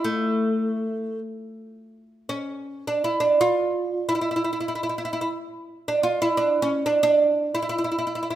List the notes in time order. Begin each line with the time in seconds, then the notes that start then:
0.04 A3
2.29 C#4
2.87 D4
3.04 E4
3.20 D4
3.41 F4
4.09 E4
4.15 E4
4.21 E4
4.31 E4
4.36 E4
4.44 E4
4.53 E4
4.61 E4
4.68 E4
4.75 E4
4.83 E4
4.89 E4
4.98 E4
5.05 E4
5.13 E4
5.21 E4
5.88 D4
6.03 F4
6.22 E4
6.37 D4
6.62 C#4
6.86 D4
7.03 D4
7.55 E4
7.62 E4
7.69 E4
7.78 E4
7.84 E4
7.92 E4
7.99 E4
8.07 E4
8.15 E4
8.23 E4
8.30 E4